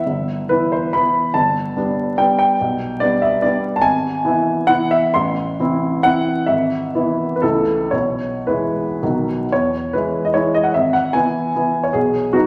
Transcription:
Already playing: E5
0.07 G1
0.49 E3 B3 E4 B4
0.72 C5
0.93 E3 B3 E4 B5
1.34 G1 A5
1.77 G3 B3 D4
2.18 G3 B3 D4 G5
2.39 G5
2.61 B1
3.00 G3 B3 D4 D5
3.22 E5
3.42 G3 B3 D4 D5
3.76 A5
3.81 G#1 G#5
4.24 E3 B3 E4
4.67 E3 B3 E4 F#5
4.91 E5
5.14 A1 C6
5.60 E3 C4 E4
6.03 E3 C4 E4 F#5
6.46 G#1 E5
6.95 E3 B3 E4
7.36 B4
7.42 C#2 E3 A3 E4 A4
7.91 B1 C#5
8.47 E3 G#3 E4 B4
9.02 B1 D#3 F#3 F#4
9.52 E2 C#5
9.93 E3 G#3 E4 B4
10.25 D#5
10.34 E3 G#3 E4 C#5
10.54 D#5
10.64 F#5
10.74 G#1 E5
10.93 F#5
11.13 E3 B3 E4 G#5
11.56 E3 B3 E4
11.83 C#5
11.93 B1 G#4
12.33 F#3 B3 D#4 F#4

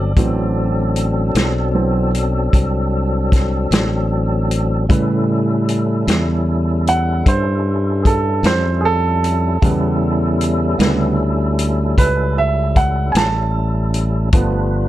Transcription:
Already playing: G1 F#3 C4 D4 A4 D5
0.16 A1 E3 F#3 C4 D4 A4, kick, closed hi-hat
0.96 closed hi-hat
1.35 B1, snare, closed hi-hat
1.74 E3 F#3 C4
2.15 closed hi-hat
2.53 C2, kick, closed hi-hat
3.32 kick, snare, closed hi-hat
3.71 A1, snare, closed hi-hat
4.51 closed hi-hat
4.89 A2 C#3 G3 C#4 E4 A4 B4, kick, closed hi-hat
5.69 closed hi-hat
6.08 E2, snare, closed hi-hat
6.87 F#5, closed hi-hat
7.26 G2 C5, kick, closed hi-hat
8.03 G#4 A4, kick, closed hi-hat
8.43 F2 C5, snare, closed hi-hat
8.81 G#4
8.85 A4
9.24 closed hi-hat
9.62 E2 C#3 G3 B3 C#4 E4 A4, kick, closed hi-hat
10.41 closed hi-hat
10.78 D2 C#3 G3 B3, snare, closed hi-hat
11.59 closed hi-hat
11.98 C#2 B4, kick, closed hi-hat
12.38 E5
12.76 F#5, kick, closed hi-hat
13.12 A1 G#5, closed hi-hat
13.17 A5, snare
13.94 closed hi-hat
14.32 G1 F3 G3 A3 B3 D4 F4 B4, kick, closed hi-hat

